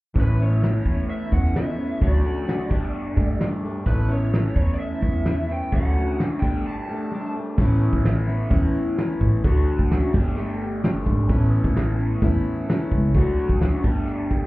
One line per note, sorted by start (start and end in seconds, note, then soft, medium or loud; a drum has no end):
0.14 0.74 A1 medium
0.14 0.38 A2 medium
0.14 0.39 E3 medium
0.14 2.03 A3 medium
0.14 0.39 B3 medium
0.14 0.39 C#4 medium
0.14 0.38 E4 medium
0.14 kick loud
0.14 open hi-hat soft
0.21 0.43 B4 medium
0.39 0.61 B3 soft
0.39 0.62 C#4 soft
0.39 0.63 E4 soft
0.39 1.10 C#5 medium
0.61 1.32 E3 medium
0.61 1.32 B3 medium
0.61 1.31 C#4 medium
0.61 1.30 E4 medium
0.61 snare medium
0.85 1.05 E2 medium
0.85 kick medium
1.09 1.31 E5 medium
1.09 open hi-hat soft
1.31 1.90 E2 medium
1.31 1.54 B3 soft
1.31 1.55 C#4 soft
1.31 1.55 E4 soft
1.31 1.56 F#5 medium
1.31 kick medium
1.44 snare soft
1.54 1.78 E3 soft
1.54 1.78 B3 soft
1.54 1.77 C#4 medium
1.54 1.76 E4 medium
1.54 1.99 E5 medium
1.54 snare loud
1.54 open hi-hat soft
1.77 2.01 B3 soft
1.77 2.01 C#4 soft
1.77 2.01 E4 soft
2.01 2.59 D2 loud
2.01 2.24 D3 medium
2.01 2.25 F#3 medium
2.01 2.25 A3 medium
2.01 2.23 C#4 medium
2.01 2.71 D4 medium
2.01 2.23 F#4 medium
2.01 3.37 D5 medium
2.01 kick loud
2.01 open hi-hat soft
2.24 2.44 A3 soft
2.24 2.46 C#4 soft
2.24 2.46 F#4 soft
2.45 2.70 F#3 medium
2.45 2.70 A3 soft
2.45 2.69 C#4 medium
2.45 2.69 F#4 medium
2.45 snare medium
2.69 3.10 G1 medium
2.69 3.18 G3 medium
2.69 3.18 A3 medium
2.69 3.17 D4 medium
2.69 3.15 G4 medium
2.69 kick medium
2.95 open hi-hat soft
3.16 3.75 G2 medium
3.16 3.39 A3 soft
3.16 3.40 D4 soft
3.16 3.40 G4 soft
3.16 kick medium
3.39 3.63 G3 medium
3.39 3.64 A3 medium
3.39 3.63 D4 medium
3.39 3.62 G4 medium
3.39 snare loud
3.63 3.85 A3 soft
3.63 3.86 D4 soft
3.63 3.86 G4 soft
3.85 4.45 A1 medium
3.85 4.10 A2 medium
3.85 4.10 E3 medium
3.85 5.73 A3 medium
3.85 4.08 B3 medium
3.85 4.08 C#4 medium
3.85 4.07 E4 medium
3.85 5.73 A4 medium
3.85 4.11 B4 medium
3.85 kick loud
3.85 open hi-hat soft
4.08 4.30 B3 soft
4.08 4.31 C#4 soft
4.08 4.32 E4 soft
4.08 4.54 C#5 medium
4.31 5.02 E3 medium
4.31 5.02 B3 medium
4.31 5.01 C#4 medium
4.31 5.00 E4 medium
4.31 snare medium
4.56 4.75 E2 medium
4.56 4.72 C#5 medium
4.56 kick medium
4.74 4.79 D5 medium
4.79 5.52 E5 medium
4.79 open hi-hat soft
5.01 5.60 E2 medium
5.01 5.26 B3 soft
5.01 5.26 C#4 soft
5.01 5.25 E4 soft
5.01 kick medium
5.26 5.50 E3 medium
5.26 5.50 B3 medium
5.26 5.49 C#4 medium
5.26 5.48 E4 medium
5.26 snare loud
5.49 5.73 B3 soft
5.49 5.73 C#4 soft
5.49 5.73 E4 soft
5.49 5.73 G5 medium
5.72 6.30 D2 medium
5.72 5.96 D3 medium
5.72 5.96 F#3 medium
5.72 5.96 A3 medium
5.72 5.97 C#4 medium
5.72 6.41 D4 medium
5.72 5.95 F#4 medium
5.72 6.18 F#5 medium
5.72 kick loud
5.97 6.19 A3 soft
5.97 6.20 C#4 soft
5.97 6.19 F#4 soft
6.20 6.43 F#3 medium
6.20 6.43 A3 medium
6.20 6.43 C#4 medium
6.20 6.42 F#4 medium
6.20 snare loud
6.40 6.62 G1 medium
6.40 6.90 G3 medium
6.40 6.90 A3 medium
6.40 6.89 D4 medium
6.40 6.88 G4 medium
6.40 6.65 G5 medium
6.40 kick medium
6.67 7.32 A5 medium
6.89 7.12 A3 soft
6.89 7.13 D4 soft
6.89 7.12 G4 soft
7.12 7.35 G3 medium
7.12 7.36 A3 medium
7.12 7.35 D4 medium
7.12 7.33 G4 medium
7.34 7.59 A3 soft
7.34 7.59 D4 soft
7.34 7.58 G4 medium
7.58 7.87 A1 medium
7.58 8.04 A2 medium
7.58 8.03 E3 medium
7.58 9.45 A3 medium
7.58 8.04 B3 medium
7.58 8.05 C#4 medium
7.58 8.05 E4 medium
7.58 kick loud
7.58 crash medium
7.81 closed hi-hat medium
7.93 8.41 A1 medium
7.93 kick medium
8.04 8.28 E3 medium
8.04 8.28 B3 medium
8.04 8.27 C#4 medium
8.04 8.26 E4 medium
8.04 snare loud
8.04 closed hi-hat medium
8.27 8.49 B3 soft
8.27 8.49 C#4 soft
8.27 8.50 E4 medium
8.27 closed hi-hat medium
8.50 8.70 E2 medium
8.50 8.97 A2 medium
8.50 8.96 E3 medium
8.50 8.97 B3 medium
8.50 8.97 C#4 medium
8.50 8.98 E4 loud
8.50 kick loud
8.50 closed hi-hat medium
8.74 closed hi-hat medium
8.97 9.44 E3 medium
8.97 9.44 B3 medium
8.97 9.45 C#4 medium
8.97 9.45 E4 medium
8.97 snare loud
8.97 closed hi-hat medium
9.21 9.40 A2 medium
9.21 kick medium
9.21 closed hi-hat medium
9.44 9.73 D2 medium
9.44 9.90 D3 medium
9.44 9.90 F#3 medium
9.44 9.92 A3 medium
9.44 10.13 D4 medium
9.44 9.91 F#4 medium
9.44 kick loud
9.44 closed hi-hat medium
9.68 closed hi-hat medium
9.79 10.08 D2 medium
9.79 kick medium
9.91 10.14 F#3 medium
9.91 10.14 A3 medium
9.91 10.14 C#4 medium
9.91 10.13 F#4 medium
9.91 snare loud
9.91 closed hi-hat medium
10.13 10.90 G1 medium
10.13 11.28 G3 medium
10.13 10.36 A3 soft
10.13 10.36 D4 soft
10.13 10.36 G4 medium
10.13 kick medium
10.13 closed hi-hat medium
10.36 10.81 G3 medium
10.36 10.83 A3 medium
10.36 10.84 D4 medium
10.36 10.83 G4 loud
10.36 closed hi-hat medium
10.61 closed hi-hat medium
10.82 11.29 G3 medium
10.82 11.30 A3 medium
10.82 11.30 D4 medium
10.82 11.30 G4 medium
10.82 snare loud
10.82 closed hi-hat medium
11.06 11.26 G#1 medium
11.06 kick medium
11.06 closed hi-hat soft
11.28 11.58 A1 medium
11.28 11.76 A2 medium
11.28 11.74 E3 medium
11.28 13.15 A3 medium
11.28 11.75 B3 medium
11.28 11.76 C#4 medium
11.28 11.76 E4 medium
11.28 kick loud
11.28 closed hi-hat medium
11.33 13.17 A4 medium
11.52 closed hi-hat medium
11.64 12.12 A1 medium
11.64 kick medium
11.75 12.22 E3 medium
11.75 12.22 B3 medium
11.75 12.22 C#4 medium
11.75 12.23 E4 medium
11.75 snare loud
11.75 closed hi-hat medium
11.98 closed hi-hat medium
12.22 12.42 E2 medium
12.22 12.69 A2 medium
12.22 12.66 E3 medium
12.22 12.67 B3 medium
12.22 12.67 C#4 loud
12.22 12.68 E4 medium
12.22 kick loud
12.22 closed hi-hat medium
12.46 closed hi-hat medium
12.67 13.14 E3 medium
12.67 13.15 B3 medium
12.67 13.15 C#4 medium
12.67 13.15 E4 medium
12.67 snare loud
12.67 closed hi-hat medium
12.92 13.11 C#2 medium
12.92 kick medium
12.92 closed hi-hat medium
13.15 13.44 D2 medium
13.15 13.61 D3 medium
13.15 13.59 F#3 medium
13.15 13.60 A3 medium
13.15 13.84 D4 medium
13.15 13.61 F#4 medium
13.15 kick loud
13.15 closed hi-hat medium
13.38 closed hi-hat medium
13.49 13.78 D2 medium
13.49 kick medium
13.60 13.84 F#3 medium
13.60 13.83 A3 medium
13.60 13.82 C#4 medium
13.60 13.82 F#4 medium
13.60 snare loud
13.60 closed hi-hat medium
13.82 14.42 G1 medium
13.82 14.47 G3 medium
13.82 14.47 A3 medium
13.82 14.47 D4 medium
13.82 14.47 G4 medium
13.82 kick loud
13.82 closed hi-hat medium
13.87 14.47 G4 medium
14.07 closed hi-hat medium
14.31 kick medium
14.31 closed hi-hat medium